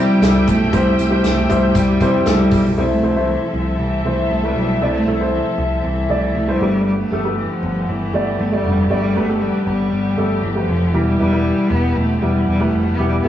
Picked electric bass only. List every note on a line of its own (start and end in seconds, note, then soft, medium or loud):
0.00 0.18 C3 medium
0.22 0.43 C2 medium
0.48 0.69 B1 medium
0.73 0.94 C2 medium
0.99 1.20 C2 medium
1.25 1.45 C2 medium
1.50 1.71 C2 loud
1.75 1.96 C2 medium
2.01 2.22 C3 medium
2.26 2.47 C2 loud
2.52 2.73 B1 medium
2.77 2.98 C2 medium
3.03 3.34 C2 medium
3.53 3.75 C2 medium
3.79 4.00 C2 medium
4.04 4.26 C2 medium
4.30 4.52 C2 medium
4.56 4.77 B1 medium
4.81 5.02 C2 medium
5.07 5.38 C2 medium
5.58 5.79 C2 medium
5.84 6.05 C2 medium
6.09 6.30 C2 medium
6.35 6.56 C2 medium
6.60 7.02 G1 medium
7.12 7.43 G1 medium
7.63 7.84 G1 loud
7.89 8.09 G1 medium
8.14 8.35 G1 medium
8.39 8.60 G1 medium
8.64 8.85 F1 medium
8.90 9.11 G1 medium
9.17 9.48 G1 medium
9.67 9.88 G1 medium
9.92 10.13 G1 medium
10.17 10.38 G1 medium
10.43 10.64 G1 medium
10.68 10.89 F1 medium
10.93 11.15 E1 medium
11.19 11.51 E1 medium
11.70 11.91 E1 medium
11.96 12.17 E1 medium
12.22 12.43 E1 medium
12.47 12.68 E1 medium
12.73 12.93 F1 medium
12.98 13.19 E1 medium
13.23 13.28 E1 medium